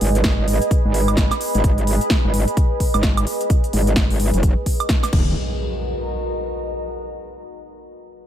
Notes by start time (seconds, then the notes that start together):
Already playing: G#4 B4 D#5 B5
0.01 G#1, open hi-hat
0.15 closed hi-hat
0.24 G#1, kick, snare, closed hi-hat
0.38 G#1
0.48 open hi-hat
0.62 closed hi-hat
0.71 kick, closed hi-hat
0.85 G#1
0.94 open hi-hat
1.08 closed hi-hat, high woodblock
1.17 G#1, kick, snare, closed hi-hat
1.31 snare, closed hi-hat, high woodblock
1.41 open hi-hat
1.55 G#1, closed hi-hat
1.64 G#1, kick, closed hi-hat
1.78 closed hi-hat
1.87 open hi-hat
2.01 closed hi-hat
2.10 kick, snare, closed hi-hat
2.24 G#1
2.34 open hi-hat
2.48 closed hi-hat
2.57 kick, closed hi-hat
2.80 kick, open hi-hat
2.94 G#1, closed hi-hat, high woodblock
3.03 kick, snare, closed hi-hat
3.17 closed hi-hat, high woodblock
3.27 open hi-hat
3.41 closed hi-hat
3.50 kick, closed hi-hat
3.64 closed hi-hat
3.73 G#1, open hi-hat
3.87 closed hi-hat
3.96 G#1, kick, snare, closed hi-hat
4.10 G#1, open hi-hat
4.20 open hi-hat
4.34 F#1, closed hi-hat
4.43 kick, closed hi-hat
4.66 kick, open hi-hat
4.80 closed hi-hat, high woodblock
4.89 kick, snare, closed hi-hat
5.03 snare, closed hi-hat, high woodblock
5.13 D#1 F#4, kick, crash, impact
5.21 A#4
5.52 D#5
5.57 A#5